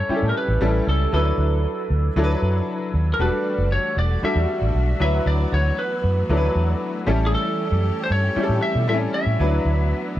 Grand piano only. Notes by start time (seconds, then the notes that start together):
Already playing: G3 C#4 E4 A4
0.09 G3 C#4 E4 G4
0.16 A4
0.61 G3 C#4 E4 A4
1.12 F#3 D4 E4 B4
2.16 F#3 D4 E4 A4
2.24 B4
3.19 G3 D4 F#4 A4
4.23 G3 D4 F#4 A4
5.00 F#3 D4 E4 B4
6.29 F#3 D4 E4 A4
6.37 B4
7.07 G3 C#4 E4 A4
8.36 G3 C#4 E4 G4
8.43 A4
8.88 G3 C4 E4 A4
8.94 C#4
9.39 F#3 D4 E4 B4